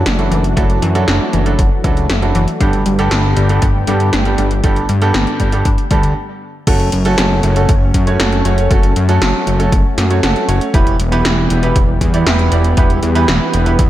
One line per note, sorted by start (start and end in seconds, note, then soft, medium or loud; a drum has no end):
0.00 2.56 E3 medium
0.00 2.56 F#3 medium
0.00 6.12 A3 medium
0.00 2.56 D4 medium
0.00 2.56 F#4 medium
0.06 0.29 F#1 medium
0.06 snare loud
0.06 closed hi-hat medium
0.19 0.39 F#3 medium
0.19 0.39 D4 medium
0.19 0.39 E4 medium
0.19 0.39 F#4 medium
0.19 0.39 A4 medium
0.19 closed hi-hat soft
0.31 0.55 F#1 medium
0.31 0.45 E3 medium
0.31 closed hi-hat medium
0.44 closed hi-hat soft
0.57 0.80 F#1 medium
0.57 0.77 F#3 medium
0.57 0.79 A3 medium
0.57 0.77 D4 medium
0.57 0.77 E4 medium
0.57 0.77 F#4 medium
0.57 0.77 A4 medium
0.57 kick loud
0.57 closed hi-hat medium
0.70 closed hi-hat soft
0.82 1.06 F#2 medium
0.82 0.96 E3 loud
0.82 closed hi-hat medium
0.95 1.43 F#3 medium
0.95 1.43 D4 medium
0.95 1.43 E4 medium
0.95 1.43 F#4 medium
0.95 1.43 A4 loud
0.95 closed hi-hat soft
1.08 1.20 F#1 loud
1.08 1.30 D4 medium
1.08 snare loud
1.08 closed hi-hat medium
1.33 1.57 F#1 medium
1.33 1.56 E3 medium
1.33 closed hi-hat medium
1.46 1.58 F#3 medium
1.46 1.58 D4 medium
1.46 1.58 E4 medium
1.46 1.58 F#4 medium
1.46 1.58 A4 medium
1.46 closed hi-hat soft
1.59 1.70 F#1 medium
1.59 kick loud
1.59 closed hi-hat medium
1.84 2.07 C#2 loud
1.84 1.98 E3 medium
1.84 2.04 F#3 medium
1.84 2.04 D4 medium
1.84 2.04 E4 medium
1.84 2.04 F#4 medium
1.84 2.04 A4 medium
1.84 kick loud
1.84 closed hi-hat medium
1.97 closed hi-hat soft
2.10 2.33 F#1 medium
2.10 2.32 A3 medium
2.10 snare loud
2.10 closed hi-hat medium
2.22 2.42 F#3 medium
2.22 2.42 D4 medium
2.22 2.42 E4 medium
2.22 2.42 F#4 medium
2.22 2.42 A4 medium
2.22 closed hi-hat soft
2.35 2.47 F#1 medium
2.35 2.49 E3 loud
2.35 closed hi-hat medium
2.48 closed hi-hat soft
2.60 2.84 G1 loud
2.60 2.80 G2 medium
2.60 6.13 D3 medium
2.60 6.13 G3 medium
2.60 6.13 B3 medium
2.60 2.80 B3 medium
2.60 2.80 D4 medium
2.60 2.83 D4 medium
2.60 6.13 G4 medium
2.60 2.80 G4 medium
2.60 2.80 A4 medium
2.60 kick loud
2.60 closed hi-hat medium
2.73 closed hi-hat soft
2.86 3.09 G1 medium
2.86 3.08 G3 medium
2.86 closed hi-hat medium
2.99 3.46 G2 loud
2.99 3.46 B3 medium
2.99 3.46 D4 medium
2.99 3.46 G4 medium
2.99 3.46 A4 loud
2.99 closed hi-hat soft
3.11 3.35 G1 medium
3.11 snare loud
3.11 closed hi-hat medium
3.37 3.60 G1 medium
3.37 3.50 G3 medium
3.37 closed hi-hat medium
3.49 3.62 G2 medium
3.49 3.62 B3 medium
3.49 3.62 D4 medium
3.49 3.62 G4 medium
3.49 3.62 A4 medium
3.49 closed hi-hat soft
3.62 3.85 G1 loud
3.62 3.85 B3 medium
3.62 kick loud
3.62 closed hi-hat medium
3.87 4.08 G2 medium
3.87 4.11 G2 loud
3.87 4.01 G3 loud
3.87 4.08 B3 medium
3.87 4.08 D4 medium
3.87 4.08 G4 medium
3.87 4.08 A4 medium
3.87 closed hi-hat medium
4.00 closed hi-hat soft
4.13 4.36 G1 medium
4.13 4.35 D4 medium
4.13 snare loud
4.13 closed hi-hat medium
4.25 4.46 G2 medium
4.25 4.46 B3 medium
4.25 4.46 D4 medium
4.25 4.46 G4 medium
4.25 4.46 A4 medium
4.25 closed hi-hat soft
4.38 4.62 G1 medium
4.38 4.61 G3 medium
4.38 closed hi-hat medium
4.51 closed hi-hat medium
4.64 4.87 G1 loud
4.64 4.84 G2 medium
4.64 4.84 B3 medium
4.64 4.84 D4 medium
4.64 4.84 G4 medium
4.64 4.84 A4 medium
4.64 kick loud
4.64 closed hi-hat medium
4.76 closed hi-hat soft
4.89 5.12 G2 medium
4.89 5.03 G3 medium
4.89 closed hi-hat medium
5.02 5.50 G2 medium
5.02 5.50 B3 medium
5.02 5.50 D4 medium
5.02 5.50 G4 medium
5.02 5.50 A4 loud
5.02 closed hi-hat medium
5.14 5.26 G1 loud
5.14 5.37 B3 medium
5.14 snare loud
5.14 closed hi-hat medium
5.27 closed hi-hat soft
5.40 5.63 G1 medium
5.40 5.53 G3 medium
5.40 kick medium
5.40 closed hi-hat medium
5.52 5.65 G2 medium
5.52 5.65 B3 medium
5.52 5.65 D4 medium
5.52 5.65 G4 medium
5.52 5.65 A4 medium
5.52 closed hi-hat medium
5.65 5.77 G1 medium
5.65 5.88 D4 medium
5.65 kick loud
5.65 closed hi-hat medium
5.78 closed hi-hat soft
5.91 6.14 D2 loud
5.91 6.11 G2 medium
5.91 6.13 G3 medium
5.91 6.11 B3 medium
5.91 6.11 D4 medium
5.91 6.11 G4 medium
5.91 6.11 A4 medium
5.91 kick loud
5.91 closed hi-hat medium
6.03 closed hi-hat soft
6.67 6.90 F#1 loud
6.67 10.70 F#3 medium
6.67 10.70 A3 medium
6.67 6.87 A3 medium
6.67 10.70 C#4 medium
6.67 6.87 C#4 medium
6.67 6.87 F#4 medium
6.67 6.87 A4 medium
6.67 kick loud
6.67 closed hi-hat medium
6.67 crash loud
6.80 closed hi-hat soft
6.92 7.16 F#1 medium
6.92 closed hi-hat medium
7.05 7.53 A3 loud
7.05 7.53 C#4 medium
7.05 7.53 F#4 medium
7.05 7.53 A4 loud
7.05 closed hi-hat medium
7.18 7.41 F#1 medium
7.18 snare loud
7.18 closed hi-hat medium
7.43 7.67 F#1 loud
7.43 closed hi-hat medium
7.56 7.69 A3 medium
7.56 7.69 C#4 medium
7.56 7.69 F#4 medium
7.56 7.69 A4 medium
7.56 closed hi-hat medium
7.69 7.92 F#1 loud
7.69 kick loud
7.69 closed hi-hat medium
7.94 8.17 F#2 loud
7.94 kick medium
7.94 closed hi-hat medium
8.07 8.17 A3 medium
8.07 8.17 C#4 medium
8.07 8.17 F#4 medium
8.07 8.17 C#5 medium
8.07 closed hi-hat medium
8.20 8.43 F#1 medium
8.20 8.42 A3 medium
8.20 8.42 C#4 medium
8.20 8.42 F#4 medium
8.20 8.42 A4 loud
8.20 snare loud
8.20 closed hi-hat medium
8.32 closed hi-hat soft
8.45 8.68 F#1 medium
8.45 8.68 A3 medium
8.45 8.68 C#4 medium
8.45 8.68 F#4 medium
8.45 8.68 C#5 medium
8.45 closed hi-hat medium
8.58 closed hi-hat medium
8.71 8.94 F#1 medium
8.71 8.91 A3 medium
8.71 8.91 C#4 medium
8.71 8.91 F#4 medium
8.71 8.91 A4 medium
8.71 kick loud
8.71 closed hi-hat medium
8.83 closed hi-hat soft
8.96 9.19 F#2 medium
8.96 closed hi-hat medium
9.09 9.57 A3 loud
9.09 9.57 C#4 medium
9.09 9.57 F#4 medium
9.09 9.57 A4 loud
9.09 closed hi-hat medium
9.22 9.33 F#1 loud
9.22 snare loud
9.22 closed hi-hat medium
9.47 9.70 F#1 medium
9.47 closed hi-hat medium
9.60 9.72 A3 medium
9.60 9.72 C#4 medium
9.60 9.72 F#4 medium
9.60 9.72 A4 medium
9.60 closed hi-hat medium
9.72 9.84 F#1 medium
9.72 kick loud
9.72 closed hi-hat medium
9.98 10.21 F#2 medium
9.98 snare medium
9.98 closed hi-hat medium
10.10 10.20 A3 medium
10.10 10.20 C#4 medium
10.10 10.20 F#4 medium
10.10 10.20 C#5 medium
10.10 closed hi-hat medium
10.23 10.35 F#1 medium
10.23 10.45 A3 medium
10.23 10.45 C#4 medium
10.23 10.45 F#4 medium
10.23 10.46 A4 loud
10.23 snare loud
10.23 closed hi-hat medium
10.36 closed hi-hat soft
10.48 10.60 F#1 medium
10.48 10.71 A3 medium
10.48 10.71 C#4 medium
10.48 10.71 F#4 medium
10.48 10.71 C#5 medium
10.48 closed hi-hat medium
10.61 closed hi-hat medium
10.74 10.97 E1 loud
10.74 10.94 E3 medium
10.74 13.90 E3 medium
10.74 13.90 G3 medium
10.74 10.94 B3 medium
10.74 13.90 B3 medium
10.74 10.94 E4 medium
10.74 10.94 G4 medium
10.74 10.94 B4 loud
10.74 kick loud
10.74 closed hi-hat medium
10.87 closed hi-hat soft
11.00 11.23 E1 medium
11.00 closed hi-hat medium
11.12 11.60 E3 loud
11.12 11.60 B3 medium
11.12 11.60 E4 medium
11.12 11.60 G4 medium
11.12 11.60 B4 loud
11.12 closed hi-hat medium
11.25 11.48 E1 medium
11.25 snare loud
11.25 closed hi-hat medium
11.50 11.74 E1 loud
11.50 closed hi-hat medium
11.63 11.75 E3 medium
11.63 11.75 B3 medium
11.63 11.75 E4 medium
11.63 11.75 G4 medium
11.63 11.75 B4 loud
11.63 closed hi-hat medium
11.76 11.99 E1 loud
11.76 kick loud
11.76 closed hi-hat medium
12.01 12.24 E2 loud
12.01 kick medium
12.01 closed hi-hat medium
12.14 12.23 E3 medium
12.14 12.23 B3 medium
12.14 12.23 E4 medium
12.14 12.23 G4 medium
12.14 12.23 D5 medium
12.14 closed hi-hat medium
12.26 12.50 E1 medium
12.26 12.49 E3 loud
12.26 12.49 B3 medium
12.26 12.49 E4 medium
12.26 12.49 G4 medium
12.26 12.49 B4 loud
12.26 snare loud
12.26 closed hi-hat medium
12.39 closed hi-hat soft
12.52 12.75 E1 medium
12.52 12.74 E3 medium
12.52 12.74 B3 medium
12.52 12.74 E4 medium
12.52 12.74 G4 medium
12.52 12.74 D5 medium
12.52 closed hi-hat medium
12.64 closed hi-hat medium
12.77 13.00 E1 loud
12.77 12.97 E3 medium
12.77 12.97 B3 medium
12.77 12.97 E4 medium
12.77 12.97 G4 medium
12.77 12.97 B4 medium
12.77 kick loud
12.77 closed hi-hat medium
12.90 closed hi-hat soft
13.03 13.26 E2 medium
13.03 closed hi-hat medium
13.15 13.63 E3 loud
13.15 13.63 B3 medium
13.15 13.63 E4 medium
13.15 13.63 G4 medium
13.15 13.63 B4 loud
13.15 closed hi-hat medium
13.28 13.40 E1 loud
13.28 snare loud
13.28 closed hi-hat medium
13.54 13.77 E1 medium
13.54 closed hi-hat medium
13.66 13.79 E3 medium
13.66 13.79 B3 medium
13.66 13.79 E4 medium
13.66 13.79 G4 medium
13.66 13.79 B4 medium
13.66 closed hi-hat medium
13.79 13.90 E2 medium
13.79 kick loud
13.79 closed hi-hat medium